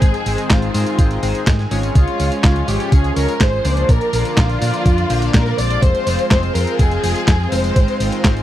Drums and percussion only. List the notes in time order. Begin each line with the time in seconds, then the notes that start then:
0.02 kick, closed hi-hat, tambourine
0.14 closed hi-hat, tambourine
0.26 open hi-hat, tambourine
0.38 closed hi-hat, tambourine
0.50 kick, snare, clap, closed hi-hat, tambourine
0.62 closed hi-hat, tambourine
0.74 open hi-hat, tambourine
0.87 closed hi-hat, tambourine
0.99 kick, closed hi-hat, tambourine
1.11 closed hi-hat, tambourine
1.23 open hi-hat, tambourine
1.35 closed hi-hat, tambourine
1.47 kick, snare, clap, closed hi-hat, tambourine
1.59 snare, tambourine
1.71 open hi-hat, tambourine
1.83 closed hi-hat, tambourine
1.95 kick, closed hi-hat, tambourine
2.08 closed hi-hat, tambourine
2.20 open hi-hat, tambourine
2.32 closed hi-hat, tambourine
2.44 kick, snare, clap, closed hi-hat, tambourine
2.56 closed hi-hat, tambourine
2.68 open hi-hat, tambourine
2.80 closed hi-hat, tambourine
2.92 kick, closed hi-hat, tambourine
3.04 closed hi-hat, tambourine
3.16 open hi-hat, tambourine
3.29 closed hi-hat, tambourine
3.41 kick, snare, clap, closed hi-hat, tambourine
3.53 tambourine
3.65 open hi-hat, tambourine
3.77 closed hi-hat, tambourine
3.89 kick, closed hi-hat, tambourine
4.01 closed hi-hat, tambourine
4.13 open hi-hat, tambourine
4.25 closed hi-hat, tambourine
4.37 kick, snare, clap, closed hi-hat, tambourine
4.49 closed hi-hat, tambourine
4.62 open hi-hat, tambourine
4.74 closed hi-hat, tambourine
4.86 kick, closed hi-hat, tambourine
4.98 closed hi-hat, tambourine
5.10 open hi-hat, tambourine
5.22 closed hi-hat, tambourine
5.34 kick, snare, clap, closed hi-hat, tambourine
5.46 snare, tambourine
5.58 open hi-hat, tambourine
5.71 closed hi-hat, tambourine
5.82 kick, closed hi-hat, tambourine
5.95 closed hi-hat, tambourine
6.07 open hi-hat, tambourine
6.19 closed hi-hat, tambourine
6.31 kick, snare, clap, closed hi-hat, tambourine
6.43 closed hi-hat, tambourine
6.55 open hi-hat, tambourine
6.67 closed hi-hat, tambourine
6.79 kick, closed hi-hat, tambourine
6.91 closed hi-hat, tambourine
7.04 open hi-hat, tambourine
7.16 closed hi-hat, tambourine
7.28 kick, snare, clap, closed hi-hat, tambourine
7.40 tambourine
7.52 open hi-hat, tambourine
7.64 closed hi-hat, tambourine
7.76 kick, closed hi-hat, tambourine
7.88 closed hi-hat, tambourine
8.00 open hi-hat, tambourine
8.12 closed hi-hat, tambourine
8.24 kick, snare, clap, closed hi-hat, tambourine
8.37 closed hi-hat, tambourine